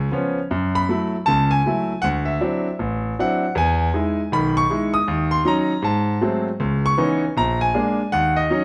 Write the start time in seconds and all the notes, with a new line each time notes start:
Already playing: G#5
0.12 F3 B3 C#4
0.51 F#2
0.75 B5
0.89 F#3 A3 E4
1.26 C#2 C#3 A5
1.51 G#5
1.66 F#3 A3 E4
2.02 D2 F#5
2.25 E5
2.41 F#3 C4 D4 E4
2.79 A1
3.19 F#3 C4 D4 E4 F#5
3.55 E2 G#5
3.94 G#3 D#4 E4
4.32 B1 D#3 B5
4.57 C#6
4.70 G#3 D#4 E4
4.94 D#6
5.08 D#2
5.31 C6
5.45 F#3 C#4 D#4 A#5
5.82 G#2 A5
6.21 F#3 G#3 A3 C4
6.60 C#2
6.86 C#6
6.98 E3 B3 C#4 D#4
7.37 A#1 A#5
7.61 G#5
7.74 G#3 A#3 D4
8.12 D#2 F#5
8.36 D#5
8.50 F#3 C#4 D#4